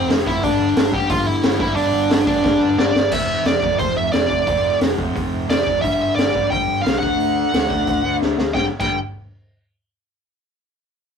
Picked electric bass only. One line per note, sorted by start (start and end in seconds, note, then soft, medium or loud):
0.09 0.24 F1 medium
0.26 0.41 F#1 medium
0.43 0.58 G1 medium
0.59 0.74 G1 loud
0.76 0.91 G1 medium
0.93 1.08 G1 loud
1.10 1.25 G1 loud
1.27 1.42 G1 loud
1.44 1.59 G1 medium
1.60 1.75 G1 medium
1.76 1.91 G1 medium
1.93 2.08 G1 loud
2.11 2.26 G1 loud
2.27 2.42 G1 medium
2.43 2.59 G1 loud
2.63 2.77 G1 loud
2.79 2.93 G1 medium
2.95 3.12 G1 medium
3.12 3.35 F1 medium
3.45 3.57 F1 medium
3.62 3.74 F1 medium
3.79 3.91 F1 medium
3.97 4.09 F1 medium
4.14 4.26 F1 medium
4.30 4.42 F1 medium
4.47 4.70 F1 medium
4.81 4.93 F1 medium
4.98 5.10 F1 medium
5.15 5.27 F1 medium
5.32 5.44 F1 medium
5.49 5.61 F1 medium
5.67 5.78 F1 medium
5.84 6.07 G1 medium
6.17 6.29 G1 medium
6.35 6.46 G1 medium
6.52 6.63 G1 medium
6.68 6.80 G1 medium
6.85 6.97 C2 medium
7.03 7.15 D2 medium
7.19 7.43 D2 medium
7.54 7.65 D2 medium
7.71 7.82 D2 medium
7.87 7.99 D2 medium
8.04 8.16 D2 medium
8.21 8.33 D2 medium
8.38 8.50 D2 medium
8.55 8.65 G1 medium
8.80 8.96 G1 medium